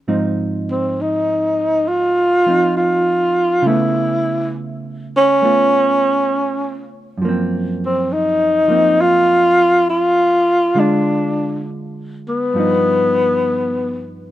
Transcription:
0.08 hollow-body jazz guitar G#2 F3 C4 D#4
0.71 tenor saxophone C4
1.01 tenor saxophone D#4
1.88 tenor saxophone F4
2.46 hollow-body jazz guitar F3 C4 D#4
2.77 tenor saxophone F4
3.62 hollow-body jazz guitar C#3 A3
3.68 hollow-body jazz guitar B3, tenor saxophone E4
5.17 tenor saxophone C#4
5.42 hollow-body jazz guitar A3 B3 F4
7.18 hollow-body jazz guitar F#2
7.22 hollow-body jazz guitar F3 A#3
7.29 hollow-body jazz guitar C4
7.86 tenor saxophone C4
8.13 tenor saxophone D#4
8.68 hollow-body jazz guitar F3 A#3 C4
9.01 tenor saxophone F4
9.89 tenor saxophone F4
10.75 hollow-body jazz guitar D3 G#3
10.80 tenor saxophone D4, hollow-body jazz guitar F4
12.29 tenor saxophone B3
12.54 hollow-body jazz guitar G2 F3 B3
12.59 hollow-body jazz guitar D#4

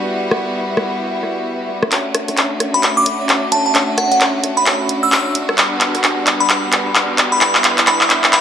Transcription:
Already playing: violin section G3 B3 F#4
0.08 violin section E4
0.31 cross-stick
0.77 cross-stick
1.83 cross-stick
1.91 violin section A3 C#4 D4 F#4, clap, closed hi-hat
2.15 cross-stick, closed hi-hat
2.28 closed hi-hat
2.37 clap, closed hi-hat
2.60 cross-stick, closed hi-hat
2.74 synth bell B5, closed hi-hat
2.83 clap, closed hi-hat
2.97 synth bell D6
3.06 closed hi-hat
3.29 clap, closed hi-hat
3.52 synth bell A5, closed hi-hat
3.66 synth bell A5
3.75 clap, closed hi-hat
3.98 synth bell F#5, cross-stick, closed hi-hat
4.12 synth bell F#5, closed hi-hat
4.21 clap, closed hi-hat
4.44 closed hi-hat
4.57 synth bell B5, closed hi-hat
4.66 clap, closed hi-hat
4.89 closed hi-hat
5.03 synth bell E6
5.12 synth bell E6, clap, closed hi-hat
5.35 closed hi-hat
5.49 cross-stick
5.58 violin section G3 B3, clap, closed hi-hat
5.81 clap, closed hi-hat
5.95 closed hi-hat
6.04 clap, closed hi-hat
6.27 clap, closed hi-hat
6.40 synth bell B5, closed hi-hat
6.50 clap, closed hi-hat
6.73 clap, closed hi-hat
6.95 clap, closed hi-hat
7.18 clap, closed hi-hat
7.32 synth bell B5
7.41 violin section E4, synth bell B5, clap, closed hi-hat
7.55 clap
7.64 clap, closed hi-hat
7.78 clap, closed hi-hat
7.87 synth bell B5, clap, closed hi-hat
8.01 clap
8.10 clap, closed hi-hat
8.24 clap, closed hi-hat
8.33 synth bell B5, clap, closed hi-hat

